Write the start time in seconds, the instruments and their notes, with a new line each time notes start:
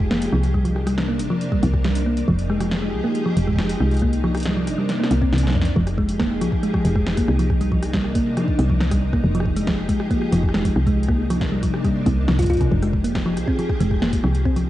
Already playing: fm bass F1, string machine F3 D#4 G4 G#4
0.11 synth arpeggio sound A#3, snare
0.22 closed hi-hat
0.32 fm bass C2, synth arpeggio sound F3, cross-stick
0.43 closed hi-hat
0.54 string machine C3 A#3 D4, synth arpeggio sound G3, kick, cross-stick
0.65 synth arpeggio sound F3, closed hi-hat
0.76 cross-stick
0.87 synth arpeggio sound G3, cross-stick, closed hi-hat
0.98 snare
1.08 synth arpeggio sound A#3
1.19 fm bass G1, closed hi-hat
1.30 synth arpeggio sound F3
1.41 closed hi-hat
1.52 synth arpeggio sound G3, kick
1.63 fm bass C2, synth arpeggio sound F3, kick, closed hi-hat
1.74 kick, cross-stick
1.85 synth arpeggio sound G3, snare
1.95 closed hi-hat
2.06 synth arpeggio sound A#3
2.17 closed hi-hat
2.28 fm bass F1, synth arpeggio sound F3, string machine F3 D#4 G4 G#4, kick
2.39 closed hi-hat
2.50 synth arpeggio sound G#3, cross-stick
2.61 synth arpeggio sound F3, cross-stick, closed hi-hat
2.72 snare
2.82 synth arpeggio sound G#3
2.93 fm bass C2
3.04 synth arpeggio sound A#3
3.15 closed hi-hat
3.26 synth arpeggio sound F3
3.37 fm bass F1, closed hi-hat
3.48 synth arpeggio sound G#3, kick
3.50 kick
3.53 kick
3.56 synth arpeggio sound F3, kick, snare
3.69 closed hi-hat
3.80 fm bass C2, synth arpeggio sound G#3, cross-stick
3.91 closed hi-hat
3.94 closed hi-hat
3.97 closed hi-hat
3.99 string machine C3 A#3 D4, synth arpeggio sound A#3, kick, cross-stick, closed hi-hat
4.13 closed hi-hat
4.24 synth arpeggio sound F3, cross-stick
4.35 cross-stick, closed hi-hat
4.37 closed hi-hat
4.40 closed hi-hat
4.43 synth arpeggio sound G3, snare, closed hi-hat
4.56 synth arpeggio sound F3
4.67 fm bass G1, cross-stick, closed hi-hat
4.78 synth arpeggio sound G3
4.89 snare, closed hi-hat
5.00 synth arpeggio sound A#3, snare
5.11 fm bass C2, closed hi-hat
5.22 synth arpeggio sound C4, kick
5.33 fm bass C2, snare
5.38 closed hi-hat
5.43 synth arpeggio sound C3, snare
5.50 snare
5.52 synth arpeggio sound F2, snare
5.55 snare
5.61 snare, closed hi-hat
5.76 fm bass F1, string machine F3 D#4 G4 G#4, synth arpeggio sound F3, kick
5.87 cross-stick, closed hi-hat
5.98 synth arpeggio sound G#3, kick
6.09 closed hi-hat
6.19 synth arpeggio sound A#3, kick, cross-stick, snare
6.41 fm bass C2, synth arpeggio sound F3, cross-stick, closed hi-hat
6.52 kick
6.63 synth arpeggio sound G#3, closed hi-hat
6.74 synth arpeggio sound F3, kick, cross-stick
6.85 fm bass F1, closed hi-hat
6.96 synth arpeggio sound G#3, kick, cross-stick
7.06 snare
7.17 synth arpeggio sound A#3, kick, closed hi-hat
7.28 fm bass C2, cross-stick
7.39 synth arpeggio sound F3, closed hi-hat
7.50 string machine C3 A#3 D4, kick, cross-stick
7.61 synth arpeggio sound G3, closed hi-hat
7.72 synth arpeggio sound F3, kick
7.83 cross-stick, closed hi-hat
7.93 synth arpeggio sound G3, kick, snare
8.04 cross-stick
8.15 fm bass G1, synth arpeggio sound A#3, kick, closed hi-hat
8.37 synth arpeggio sound F3, cross-stick, closed hi-hat
8.48 kick
8.59 fm bass C2, synth arpeggio sound G3, cross-stick, closed hi-hat
8.69 synth arpeggio sound F3, kick
8.80 snare
8.91 synth arpeggio sound G3, kick, cross-stick, closed hi-hat
9.13 synth arpeggio sound A#3, kick, cross-stick
9.24 fm bass F1, string machine F3 G4 G#4
9.35 synth arpeggio sound F3, closed hi-hat
9.40 cross-stick
9.46 kick
9.56 synth arpeggio sound G#3, closed hi-hat
9.67 synth arpeggio sound F3, kick, cross-stick, snare
9.89 fm bass C2, synth arpeggio sound G#3, kick, closed hi-hat
10.00 cross-stick
10.11 synth arpeggio sound A#3, kick, closed hi-hat
10.22 cross-stick
10.32 fm bass F1, synth arpeggio sound F3, closed hi-hat
10.43 kick
10.49 cross-stick
10.54 synth arpeggio sound G#3, snare
10.65 synth arpeggio sound F3, kick, closed hi-hat
10.76 fm bass C2, cross-stick
10.87 synth arpeggio sound G#3, kick, closed hi-hat
10.98 string machine C3 A#3 D4
11.03 closed hi-hat
11.08 synth arpeggio sound A#3, kick, cross-stick
11.30 synth arpeggio sound F3, cross-stick, closed hi-hat
11.41 kick, snare
11.52 synth arpeggio sound G3
11.63 fm bass G1, synth arpeggio sound F3, kick, closed hi-hat
11.74 cross-stick
11.85 synth arpeggio sound G3, kick, cross-stick, closed hi-hat
12.06 fm bass C2, synth arpeggio sound G3, kick, closed hi-hat
12.28 fm bass C2, synth arpeggio sound F3, snare
12.39 synth arpeggio sound F4, kick, cross-stick, closed hi-hat
12.43 kick, closed hi-hat
12.46 kick, closed hi-hat
12.50 synth arpeggio sound F4, closed hi-hat
12.54 kick, closed hi-hat
12.57 synth arpeggio sound C3, kick, closed hi-hat
12.61 closed hi-hat
12.71 fm bass F1, string machine F3 G4 G#4, kick
12.83 synth arpeggio sound G#3, cross-stick, closed hi-hat
12.93 kick
13.04 synth arpeggio sound A#3, closed hi-hat
13.15 kick, cross-stick, snare
13.26 synth arpeggio sound F3
13.37 fm bass C2, cross-stick, closed hi-hat
13.48 synth arpeggio sound C4, kick
13.59 synth arpeggio sound F3, closed hi-hat
13.69 kick, cross-stick
13.80 fm bass F1, synth arpeggio sound G#3, closed hi-hat
13.91 kick, cross-stick
13.94 cross-stick
13.97 cross-stick
13.99 synth arpeggio sound A#3, cross-stick
14.02 cross-stick, snare
14.05 cross-stick
14.08 cross-stick
14.10 kick, cross-stick, closed hi-hat
14.24 fm bass C2, synth arpeggio sound F3, cross-stick
14.35 closed hi-hat
14.45 string machine C3 A#3 D4, synth arpeggio sound C4, kick, cross-stick
14.56 synth arpeggio sound F3, closed hi-hat